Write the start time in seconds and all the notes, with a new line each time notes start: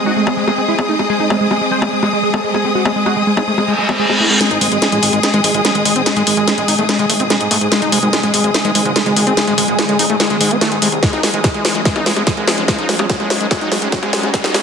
Already playing: G#3 C4 G#4 D#5 D#6
0.06 D#4 F#4
0.16 G#3 A3
0.27 G#3, high bongo
0.37 G#3
0.47 G#3 A3, high bongo
0.58 G#3 C4
0.68 G#3 E4
0.79 G#3, high bongo
0.89 A3 D#4
0.99 G#3, high bongo
1.10 G#3 G#4
1.20 G#3 D#4
1.30 G#3, high bongo
1.41 G#3 G#4
1.51 G#3, high bongo
1.61 G#3
1.72 G#3 C5
1.82 G#3, high bongo
1.92 G#3
2.03 G#3, high bongo
2.13 G#3
2.23 G#3
2.34 G#3 A4, high bongo
2.44 G#3
2.54 G#3 G#4, high bongo
2.65 G#3 C4
2.75 G#3 F#4
2.85 G#3, high bongo
2.96 G#3
3.06 G#3 F#4, high bongo
3.16 G#3
3.27 G#3
3.37 D#4 G#4, high bongo
3.47 G#3 A3
3.58 G#3, high bongo, reverse cymbal
3.68 G#3
3.79 G#3
3.89 G#3, high bongo
3.99 G#3 G#4
4.10 G#3, high bongo
4.20 A3 E4
4.30 G#3
4.41 G#3 G#4, snare, closed hi-hat, riser
4.51 G#1 D#4, closed hi-hat
4.61 G#1 G#3, open hi-hat
4.72 G#1 G#3, closed hi-hat
4.82 G#3, snare, closed hi-hat
4.92 A1 G#3, closed hi-hat
5.03 G#1 G#3, open hi-hat
5.13 G#1 G#3, closed hi-hat
5.23 snare, closed hi-hat
5.34 G#1 G#3, closed hi-hat
5.44 G#1 G#3, open hi-hat
5.54 G#1 G#3, closed hi-hat
5.65 G#3, snare, closed hi-hat
5.75 G#1 G#3, closed hi-hat
5.85 G#1 G#3, open hi-hat
5.96 G#1 C4, closed hi-hat
6.06 G#3, snare, closed hi-hat
6.16 G#1 G#3, closed hi-hat
6.27 G#1 G#3, open hi-hat
6.37 G#1 G#3, closed hi-hat
6.48 G#3, snare, closed hi-hat
6.58 A1 G#3, closed hi-hat
6.68 G#1 D#4, open hi-hat
6.79 G#1 A3, closed hi-hat
6.89 G#3, snare, closed hi-hat
6.99 G#1 G#3, closed hi-hat
7.10 G#1 A3, open hi-hat
7.20 G#1 C4, closed hi-hat
7.30 G#3, snare, closed hi-hat
7.41 G#2, closed hi-hat
7.51 G#2 A3, open hi-hat
7.61 G#2, closed hi-hat
7.72 G#3, snare, closed hi-hat
7.82 G#1 D#4, closed hi-hat
7.92 G#1 G#3, open hi-hat
8.03 G#1 G#3, closed hi-hat
8.13 G#3, snare, closed hi-hat
8.23 A1 G#3, closed hi-hat
8.34 G#1 G#3, open hi-hat
8.44 G#1 G#3, closed hi-hat
8.54 snare, closed hi-hat
8.65 G#1 G#3, closed hi-hat
8.75 G#1 G#3, open hi-hat
8.85 G#1 G#3, closed hi-hat
8.96 G#3, snare, closed hi-hat
9.06 G#1 G#3, closed hi-hat
9.16 G#1 G#3, open hi-hat
9.27 G#1 C4, closed hi-hat
9.37 G#3, snare, closed hi-hat
9.47 G#1 G#3, closed hi-hat
9.58 G#1 G#3, open hi-hat
9.68 G#1 G#3, closed hi-hat
9.79 G#3, snare, closed hi-hat
9.89 A1 G#3, closed hi-hat
9.99 G#1 D#4, open hi-hat
10.10 G#1 A3, closed hi-hat
10.20 G#3, snare, closed hi-hat
10.30 G#1 G#3, closed hi-hat
10.41 G#2 G#3, open hi-hat
10.51 G#1 C4, closed hi-hat
10.61 A3, snare, closed hi-hat
10.72 G#2, closed hi-hat
10.82 C2 G#3, open hi-hat
10.92 C2, closed hi-hat
11.03 G#3 C#4, kick, snare, closed hi-hat
11.13 G#1 D#4, closed hi-hat, high bongo
11.23 G#1 G#3, snare, open hi-hat
11.34 G#1 G#3, closed hi-hat
11.44 G#3, kick, snare, closed hi-hat, high bongo
11.54 A1 G#3, closed hi-hat
11.65 G#1 G#3, snare, open hi-hat, high bongo
11.75 G#1 G#3, closed hi-hat
11.85 G#3, kick, snare, closed hi-hat
11.96 G#1 D#4, closed hi-hat, high bongo
12.06 G#1 G#3, snare, open hi-hat
12.16 G#1 G#3, closed hi-hat, high bongo
12.27 G#3, kick, snare, closed hi-hat
12.37 G#1 G#3, closed hi-hat
12.47 G#1 G#3, snare, open hi-hat, high bongo
12.58 G#1 G#3, closed hi-hat
12.68 G#3, kick, snare, closed hi-hat, high bongo
12.79 G#1 D#4, closed hi-hat
12.89 G#1 G#3, snare, open hi-hat
12.99 G#1 G#3, closed hi-hat, high bongo
13.10 G#3, kick, snare, closed hi-hat
13.20 A1 G#3, closed hi-hat, high bongo
13.30 G#1 G#3, snare, open hi-hat
13.41 G#1 G#3, closed hi-hat
13.51 G#3, kick, snare, closed hi-hat, high bongo
13.61 G#1 D#4, closed hi-hat
13.72 G#1 G#3, snare, open hi-hat, high bongo
13.82 G#1 G#3, closed hi-hat
13.92 G#3, kick, snare, closed hi-hat
14.03 G#2 G#3, closed hi-hat, high bongo
14.13 G#2 G#3, snare, open hi-hat
14.23 G#2 G#3, closed hi-hat, high bongo
14.34 G#3, kick, snare, closed hi-hat
14.44 G#1 D#4, snare, closed hi-hat
14.54 G#1 G#3, snare, open hi-hat, high bongo